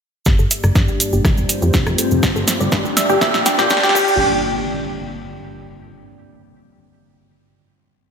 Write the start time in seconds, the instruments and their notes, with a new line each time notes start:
0.25 analog synth bass G1, synth drone G2, synth arpeggio sound G4, kick, snare, riser, cabasa
0.39 analog synth bass G1, synth arpeggio sound A4, cabasa
0.51 synth arpeggio sound E5, closed hi-hat, cabasa
0.63 analog synth bass G1, synth arpeggio sound D5, cross-stick, cabasa
0.75 analog synth bass G2, synth arpeggio sound D4, kick, snare, cabasa
0.88 analog synth bass G1, synth arpeggio sound G4, cabasa
1.00 synth arpeggio sound E5, closed hi-hat, cabasa
1.13 analog synth bass G1, synth arpeggio sound G4, cabasa
1.25 analog synth bass F1, synth arpeggio sound E5, kick, cross-stick, snare, cabasa
1.37 analog synth bass F1, cabasa
1.49 synth arpeggio sound G4, closed hi-hat, cabasa
1.62 analog synth bass F2, synth arpeggio sound G4, cabasa
1.73 analog synth bass F1, synth arpeggio sound D4, kick, snare, cabasa
1.86 analog synth bass F1, synth arpeggio sound G4, cross-stick, cabasa
1.98 synth arpeggio sound A4, closed hi-hat, cabasa
2.11 analog synth bass F1, cabasa
2.23 analog synth bass G1, analog synth pad D4 D5, synth arpeggio sound G4, kick, snare, cabasa
2.36 analog synth bass G1, synth arpeggio sound A4, cabasa
2.48 synth arpeggio sound E5, snare, closed hi-hat, cabasa
2.60 analog synth bass G1, synth arpeggio sound D5, cabasa
2.72 analog synth bass G2, synth arpeggio sound D4, kick, snare, cabasa
2.85 analog synth bass G1, synth arpeggio sound G4, cabasa
2.97 synth arpeggio sound E5, snare, closed hi-hat, cabasa
3.09 analog synth bass G1, synth arpeggio sound G4, cabasa
3.21 analog synth bass A#1, synth arpeggio sound E5, kick, snare, cabasa
3.34 analog synth bass A#1, snare, cabasa
3.46 synth arpeggio sound G4, snare, closed hi-hat, cabasa
3.59 analog synth bass A#2, synth arpeggio sound G4, snare, cabasa
3.70 analog synth bass A#1, synth arpeggio sound D4, kick, snare, cabasa
3.77 snare
3.83 analog synth bass A#1, synth arpeggio sound G4, snare, cabasa
3.89 snare
3.95 analog synth bass G1, synth arpeggio sound G4, kick, crash, impact, cabasa
4.08 cabasa